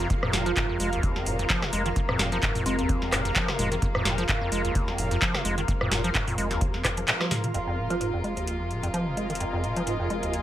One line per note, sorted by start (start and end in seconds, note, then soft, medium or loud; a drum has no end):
0.00 7.50 C3 medium
0.00 7.50 F3 medium
0.00 7.50 G#3 medium
0.00 7.53 F4 medium
0.00 7.54 A#4 medium
0.00 8.88 F5 medium
0.00 8.69 A#5 medium
0.10 0.14 F2 loud
0.10 7.53 A#3 medium
0.10 kick loud
0.10 closed hi-hat medium
0.23 0.35 F2 loud
0.23 cross-stick medium
0.23 mid tom medium
0.33 0.53 F1 loud
0.33 0.44 A#2 medium
0.33 snare medium
0.33 open hi-hat loud
0.46 0.52 F3 loud
0.46 0.53 F4 medium
0.46 closed hi-hat soft
0.57 0.67 G#2 medium
0.57 0.65 F4 medium
0.57 kick loud
0.57 clap loud
0.57 closed hi-hat medium
0.69 0.78 F2 loud
0.80 1.00 F1 medium
0.80 0.90 G#3 medium
0.80 open hi-hat loud
0.93 1.18 D#2 medium
0.93 closed hi-hat soft
1.03 kick loud
1.03 closed hi-hat medium
1.16 1.28 F2 loud
1.16 snare soft
1.26 1.46 F1 medium
1.26 1.37 A#2 medium
1.26 open hi-hat loud
1.39 1.45 F2 loud
1.39 closed hi-hat medium
1.50 1.64 F3 loud
1.50 kick loud
1.50 clap loud
1.50 closed hi-hat medium
1.62 1.71 C3 medium
1.62 cross-stick medium
1.62 snare medium
1.73 1.93 F1 loud
1.73 1.83 G#3 medium
1.73 open hi-hat loud
1.86 1.89 D#3 medium
1.86 closed hi-hat medium
1.96 2.00 F2 loud
1.96 kick loud
1.96 closed hi-hat medium
2.09 2.21 F2 loud
2.09 cross-stick medium
2.09 mid tom medium
2.19 2.39 F1 loud
2.19 2.30 A#2 medium
2.19 snare medium
2.19 open hi-hat loud
2.32 2.38 F3 loud
2.32 closed hi-hat medium
2.43 2.53 G#2 medium
2.43 kick loud
2.43 clap loud
2.43 closed hi-hat medium
2.55 2.64 F2 loud
2.55 mid tom medium
2.55 open hi-hat medium
2.66 2.86 F1 medium
2.66 2.76 G#3 medium
2.66 2.74 C4 medium
2.66 open hi-hat loud
2.79 3.03 D#2 medium
2.79 2.85 C4 medium
2.79 closed hi-hat medium
2.89 kick loud
2.89 closed hi-hat medium
3.02 3.14 F2 loud
3.02 snare soft
3.12 3.32 F1 medium
3.12 3.23 A#2 medium
3.12 cross-stick medium
3.12 clap medium
3.12 open hi-hat loud
3.25 3.31 F2 loud
3.25 closed hi-hat medium
3.36 3.50 F3 loud
3.36 kick loud
3.36 clap loud
3.36 closed hi-hat medium
3.48 3.57 C3 medium
3.48 cross-stick medium
3.48 snare medium
3.59 3.79 F1 loud
3.59 3.69 G#3 medium
3.59 mid tom medium
3.59 open hi-hat loud
3.72 3.75 D#3 medium
3.72 closed hi-hat medium
3.82 3.86 F2 loud
3.82 kick loud
3.82 closed hi-hat medium
3.95 4.07 F2 loud
3.95 cross-stick medium
3.95 mid tom medium
4.05 4.25 F1 loud
4.05 4.16 A#2 medium
4.05 snare medium
4.05 open hi-hat loud
4.18 4.24 F3 loud
4.18 closed hi-hat medium
4.29 4.39 G#2 medium
4.29 kick loud
4.29 clap loud
4.29 closed hi-hat medium
4.41 4.50 F2 loud
4.52 4.72 F1 medium
4.52 4.62 G#3 medium
4.52 open hi-hat loud
4.65 4.89 D#2 medium
4.65 closed hi-hat medium
4.75 kick loud
4.75 closed hi-hat medium
4.88 5.00 F2 loud
4.88 snare soft
4.98 5.18 F1 medium
4.98 5.09 A#2 medium
4.98 open hi-hat loud
5.11 5.17 F2 loud
5.11 closed hi-hat medium
5.22 5.36 F3 loud
5.22 kick loud
5.22 clap loud
5.22 closed hi-hat medium
5.34 5.43 C3 medium
5.34 cross-stick medium
5.34 snare medium
5.45 5.65 F1 loud
5.45 5.55 G#3 medium
5.45 open hi-hat loud
5.58 5.61 D#3 medium
5.58 closed hi-hat medium
5.68 5.72 F2 loud
5.68 kick loud
5.68 closed hi-hat medium
5.81 5.93 F2 loud
5.81 cross-stick medium
5.81 mid tom medium
5.91 6.11 F1 loud
5.91 6.02 A#2 medium
5.91 snare medium
5.91 open hi-hat loud
6.04 6.10 F3 loud
6.04 closed hi-hat medium
6.15 6.25 G#2 medium
6.15 kick loud
6.15 clap loud
6.15 closed hi-hat medium
6.27 6.36 F2 loud
6.27 mid tom medium
6.27 open hi-hat medium
6.38 6.58 F1 medium
6.38 6.49 G#3 medium
6.38 open hi-hat loud
6.51 6.76 D#2 medium
6.51 snare soft
6.51 closed hi-hat medium
6.61 kick loud
6.61 closed hi-hat medium
6.74 6.83 F2 loud
6.74 snare soft
6.84 7.04 F1 medium
6.84 6.89 A#2 medium
6.84 kick medium
6.84 cross-stick medium
6.84 clap medium
6.84 open hi-hat loud
6.97 7.01 F3 medium
6.97 closed hi-hat medium
7.08 7.12 A#2 medium
7.08 clap loud
7.08 closed hi-hat medium
7.21 7.33 F3 medium
7.21 cross-stick medium
7.21 snare medium
7.21 high tom medium
7.31 7.45 G#2 loud
7.31 snare medium
7.31 mid tom medium
7.31 open hi-hat loud
7.31 mid tom medium
7.44 7.52 F3 medium
7.44 closed hi-hat medium
7.44 mid tom medium
7.54 10.42 F1 medium
7.54 7.58 F2 loud
7.54 10.42 C3 medium
7.54 10.42 F3 medium
7.54 10.42 G#3 medium
7.54 10.42 F4 medium
7.54 closed hi-hat medium
7.67 7.79 F2 loud
7.76 7.88 A#2 medium
7.76 10.42 A#4 medium
7.87 7.96 F3 loud
7.87 7.97 F4 medium
7.87 10.42 D#5 medium
7.87 closed hi-hat medium
8.01 8.11 G#2 medium
8.01 8.09 F4 medium
8.01 closed hi-hat medium
8.12 8.22 F2 loud
8.12 10.42 G#5 medium
8.24 8.35 G#3 medium
8.24 closed hi-hat soft
8.37 8.62 D#2 medium
8.37 closed hi-hat soft
8.47 closed hi-hat medium
8.60 8.72 F2 loud
8.71 8.81 A#2 medium
8.71 closed hi-hat soft
8.83 8.89 F2 loud
8.83 closed hi-hat medium
8.94 9.08 F3 loud
8.94 closed hi-hat medium
9.07 9.15 C3 medium
9.17 9.28 G#3 medium
9.17 closed hi-hat medium
9.30 9.33 D#3 medium
9.30 closed hi-hat soft
9.35 closed hi-hat medium
9.40 9.45 F2 loud
9.40 closed hi-hat medium
9.53 9.65 F2 loud
9.64 9.74 A#2 medium
9.64 closed hi-hat soft
9.76 9.82 F3 loud
9.76 closed hi-hat medium
9.87 9.97 G#2 medium
9.87 closed hi-hat medium
10.00 10.08 F2 loud
10.10 10.21 G#3 medium
10.10 closed hi-hat soft
10.23 10.42 D#2 medium
10.23 closed hi-hat soft
10.33 closed hi-hat medium